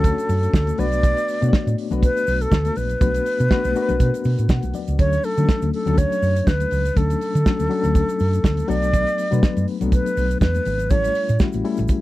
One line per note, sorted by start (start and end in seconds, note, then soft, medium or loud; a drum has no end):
0.00 0.11 D2 loud
0.00 0.78 A3 medium
0.00 0.80 C#4 medium
0.00 0.78 D4 medium
0.00 0.79 F#4 medium
0.00 0.81 A4 loud
0.00 0.79 B4 medium
0.00 0.81 C#5 loud
0.04 kick loud
0.04 closed hi-hat medium
0.04 shaker medium
0.18 closed hi-hat soft
0.18 shaker medium
0.29 0.46 F#2 loud
0.29 open hi-hat medium
0.29 shaker medium
0.43 closed hi-hat medium
0.43 shaker medium
0.54 0.71 D2 medium
0.54 kick loud
0.54 snare loud
0.54 high conga medium
0.54 shaker medium
0.67 closed hi-hat soft
0.67 high conga medium
0.67 shaker medium
0.78 1.13 B1 loud
0.78 1.28 A3 medium
0.78 1.28 B3 medium
0.78 1.28 D4 medium
0.78 1.28 F#4 medium
0.78 1.28 B4 loud
0.78 1.76 D5 loud
0.78 open hi-hat medium
0.78 low conga medium
0.78 shaker medium
0.92 closed hi-hat soft
0.92 shaker medium
1.03 kick loud
1.03 closed hi-hat medium
1.03 muted conga soft
1.03 shaker medium
1.17 closed hi-hat soft
1.17 shaker medium
1.28 open hi-hat medium
1.28 shaker medium
1.41 1.50 B2 loud
1.41 1.80 A3 medium
1.41 1.80 B3 medium
1.41 1.80 D4 medium
1.41 1.81 F#4 medium
1.41 1.47 C#5 medium
1.41 closed hi-hat medium
1.41 shaker medium
1.49 1.84 D5 loud
1.53 kick loud
1.53 snare loud
1.53 muted conga soft
1.53 shaker medium
1.67 1.74 A2 medium
1.67 closed hi-hat soft
1.67 muted conga soft
1.67 high conga medium
1.67 shaker medium
1.78 open hi-hat medium
1.91 2.09 B1 medium
1.91 2.70 A3 medium
1.91 2.70 B3 medium
1.91 2.70 D4 medium
1.91 2.70 F#4 medium
1.91 2.71 B4 medium
1.91 closed hi-hat soft
1.91 high conga medium
1.91 low conga medium
1.91 shaker medium
2.03 2.43 B4 loud
2.03 kick loud
2.03 closed hi-hat medium
2.03 shaker medium
2.17 closed hi-hat soft
2.17 shaker medium
2.27 2.44 B1 loud
2.27 open hi-hat medium
2.27 shaker medium
2.41 2.78 A4 loud
2.41 closed hi-hat medium
2.41 shaker medium
2.52 2.69 D2 loud
2.52 kick loud
2.52 snare loud
2.52 high conga medium
2.52 shaker medium
2.65 closed hi-hat soft
2.65 muted conga soft
2.65 high conga medium
2.65 shaker medium
2.76 2.94 A#1 medium
2.76 4.74 B4 loud
2.76 open hi-hat medium
2.76 low conga medium
2.76 shaker medium
2.90 closed hi-hat soft
2.90 shaker medium
3.01 3.18 B1 loud
3.01 3.42 A3 medium
3.01 3.42 B3 medium
3.01 3.42 D4 medium
3.01 3.42 F#4 medium
3.01 3.42 B4 medium
3.01 kick loud
3.01 closed hi-hat medium
3.01 muted conga soft
3.01 low conga medium
3.01 shaker medium
3.14 closed hi-hat soft
3.14 shaker medium
3.26 open hi-hat medium
3.26 shaker medium
3.40 3.47 B2 loud
3.40 closed hi-hat medium
3.40 shaker medium
3.50 3.71 A3 medium
3.50 3.71 B3 medium
3.50 3.71 D4 medium
3.50 3.71 F#4 medium
3.50 3.72 B4 loud
3.50 kick loud
3.50 snare loud
3.50 shaker medium
3.64 3.72 B1 medium
3.64 closed hi-hat soft
3.64 muted conga soft
3.64 high conga medium
3.64 shaker medium
3.75 4.55 A3 medium
3.75 4.55 B3 medium
3.75 4.56 D4 medium
3.75 4.56 F#4 medium
3.75 3.82 A#4 medium
3.75 open hi-hat medium
3.75 shaker medium
3.83 4.59 B4 medium
3.89 3.97 B1 medium
3.89 closed hi-hat medium
3.89 high conga medium
3.89 low conga medium
3.89 shaker soft
4.00 4.10 B2 loud
4.00 kick loud
4.00 closed hi-hat medium
4.00 shaker medium
4.14 closed hi-hat soft
4.14 shaker medium
4.24 4.35 B2 loud
4.24 open hi-hat medium
4.24 shaker medium
4.39 4.46 A2 medium
4.39 closed hi-hat medium
4.39 shaker medium
4.49 4.59 B2 medium
4.49 4.73 F#5 medium
4.49 kick loud
4.49 snare loud
4.49 high conga medium
4.49 shaker medium
4.62 4.71 B1 medium
4.62 closed hi-hat soft
4.62 muted conga soft
4.62 high conga medium
4.62 shaker medium
4.74 4.97 D5 medium
4.74 open hi-hat medium
4.74 low conga medium
4.74 shaker medium
4.88 4.96 C#2 loud
4.88 closed hi-hat soft
4.88 shaker medium
4.98 5.16 D2 loud
4.98 5.29 F#3 medium
4.98 5.29 A3 medium
4.98 5.29 C#4 medium
4.98 5.30 D4 medium
4.98 5.30 A4 medium
4.98 5.26 C#5 loud
4.98 kick loud
4.98 closed hi-hat medium
4.98 shaker medium
5.13 closed hi-hat soft
5.13 shaker medium
5.23 5.73 A4 loud
5.23 open hi-hat medium
5.23 shaker soft
5.38 5.45 D3 medium
5.38 5.76 F#3 medium
5.38 5.76 A3 medium
5.38 5.76 C#4 medium
5.38 5.77 D4 medium
5.38 5.77 A4 medium
5.38 closed hi-hat medium
5.38 shaker medium
5.49 kick loud
5.49 snare loud
5.49 shaker medium
5.62 5.70 D2 medium
5.62 closed hi-hat soft
5.62 muted conga soft
5.62 high conga medium
5.62 shaker medium
5.73 5.99 A4 medium
5.73 open hi-hat medium
5.86 6.04 D2 loud
5.86 6.65 F#3 medium
5.86 6.66 A3 medium
5.86 6.66 C#4 medium
5.86 6.66 D4 medium
5.86 6.66 A4 medium
5.86 closed hi-hat soft
5.86 high conga medium
5.86 low conga medium
5.86 shaker soft
5.97 6.49 C#5 loud
5.97 kick loud
5.97 closed hi-hat medium
5.97 muted conga soft
5.97 shaker medium
6.12 closed hi-hat medium
6.12 shaker medium
6.22 6.39 F#2 loud
6.22 open hi-hat medium
6.22 shaker medium
6.36 closed hi-hat medium
6.36 shaker medium
6.47 6.64 D2 loud
6.47 6.98 B4 loud
6.47 kick loud
6.47 snare loud
6.47 high conga medium
6.47 shaker medium
6.60 closed hi-hat soft
6.60 muted conga soft
6.60 high conga medium
6.60 shaker medium
6.71 6.89 C#2 loud
6.71 open hi-hat medium
6.71 low conga medium
6.71 shaker medium
6.85 closed hi-hat medium
6.85 shaker medium
6.96 7.14 D2 loud
6.96 7.37 F#3 medium
6.96 7.37 A3 medium
6.96 7.37 C#4 medium
6.96 7.38 D4 medium
6.96 8.70 A4 loud
6.96 7.38 A4 medium
6.96 kick loud
6.96 closed hi-hat medium
6.96 muted conga soft
6.96 shaker medium
7.10 closed hi-hat soft
7.10 shaker medium
7.21 open hi-hat medium
7.21 shaker medium
7.35 7.42 D3 loud
7.35 closed hi-hat medium
7.35 shaker medium
7.46 7.66 F#3 medium
7.46 7.66 A3 medium
7.46 7.66 C#4 medium
7.46 7.66 D4 medium
7.46 7.67 A4 medium
7.46 kick loud
7.46 snare loud
7.46 muted conga soft
7.46 shaker medium
7.59 7.67 D2 loud
7.59 closed hi-hat soft
7.59 muted conga soft
7.59 high conga medium
7.59 shaker medium
7.70 8.50 F#3 medium
7.70 8.50 A3 medium
7.70 8.51 C#4 medium
7.70 8.51 D4 medium
7.70 8.51 A4 medium
7.70 open hi-hat medium
7.84 8.02 D2 loud
7.84 closed hi-hat medium
7.84 high conga medium
7.84 low conga medium
7.84 shaker medium
7.95 kick loud
7.95 closed hi-hat medium
7.95 shaker medium
8.08 closed hi-hat soft
8.08 muted conga soft
8.08 shaker medium
8.19 8.37 F#2 loud
8.19 open hi-hat medium
8.19 shaker medium
8.33 closed hi-hat medium
8.33 shaker medium
8.44 8.61 D2 medium
8.44 kick loud
8.44 snare loud
8.44 muted conga soft
8.44 high conga medium
8.44 shaker medium
8.57 closed hi-hat soft
8.57 muted conga soft
8.57 high conga medium
8.57 shaker medium
8.68 9.03 B1 loud
8.68 9.18 F#3 medium
8.68 9.18 A3 medium
8.68 9.18 B3 medium
8.68 9.19 D4 medium
8.68 9.19 A4 loud
8.68 9.66 D5 loud
8.68 open hi-hat medium
8.68 low conga medium
8.68 shaker medium
8.82 closed hi-hat soft
8.82 shaker medium
8.93 kick loud
8.93 closed hi-hat medium
8.93 muted conga soft
8.93 shaker medium
9.07 closed hi-hat soft
9.07 shaker medium
9.18 open hi-hat medium
9.18 shaker medium
9.31 9.40 B2 loud
9.31 9.70 F#3 medium
9.31 9.70 A3 medium
9.31 9.70 B3 medium
9.31 9.71 D4 medium
9.31 9.71 B4 medium
9.31 closed hi-hat medium
9.31 shaker medium
9.43 kick loud
9.43 snare loud
9.43 shaker medium
9.57 9.64 F#2 medium
9.57 closed hi-hat soft
9.57 high conga medium
9.57 shaker medium
9.68 open hi-hat medium
9.81 9.99 B1 loud
9.81 10.60 F#3 medium
9.81 10.60 A3 medium
9.81 10.60 B3 medium
9.81 10.60 D4 medium
9.81 10.60 A4 medium
9.81 closed hi-hat medium
9.81 high conga medium
9.81 low conga medium
9.81 shaker medium
9.92 10.38 B4 loud
9.92 kick loud
9.92 closed hi-hat medium
9.92 muted conga soft
9.92 shaker medium
10.06 closed hi-hat soft
10.06 shaker medium
10.17 10.34 B1 loud
10.17 open hi-hat medium
10.17 shaker medium
10.31 closed hi-hat medium
10.31 shaker medium
10.40 10.58 E2 loud
10.40 10.92 B4 loud
10.40 kick loud
10.40 snare loud
10.40 high conga medium
10.40 shaker medium
10.54 closed hi-hat soft
10.54 high conga medium
10.54 shaker medium
10.65 10.91 G#1 loud
10.65 open hi-hat medium
10.65 low conga medium
10.65 shaker medium
10.79 closed hi-hat soft
10.79 shaker medium
10.90 11.08 A1 loud
10.90 11.31 G3 medium
10.90 11.31 A3 medium
10.90 11.31 C#4 medium
10.90 11.32 E4 medium
10.90 11.32 A4 medium
10.90 11.40 C#5 loud
10.90 kick loud
10.90 closed hi-hat medium
10.90 muted conga soft
10.90 low conga medium
10.90 shaker medium
11.03 closed hi-hat soft
11.03 muted conga soft
11.03 shaker medium
11.14 open hi-hat medium
11.14 shaker medium
11.29 11.37 A2 medium
11.29 closed hi-hat medium
11.29 shaker medium
11.39 11.60 G3 medium
11.39 11.60 A3 medium
11.39 11.60 C#4 medium
11.39 11.61 E4 medium
11.39 11.61 F#4 medium
11.39 kick loud
11.39 snare loud
11.39 shaker medium
11.52 11.61 A1 medium
11.52 closed hi-hat soft
11.52 muted conga soft
11.52 high conga medium
11.52 shaker medium
11.64 12.01 G3 medium
11.64 12.01 A3 medium
11.64 12.01 C#4 medium
11.64 12.01 E4 medium
11.64 12.01 A4 medium
11.64 open hi-hat medium
11.77 11.86 A1 loud
11.77 closed hi-hat soft
11.77 high conga medium
11.77 low conga medium
11.77 shaker medium
11.88 kick loud
11.88 closed hi-hat medium
11.88 muted conga soft
11.88 shaker medium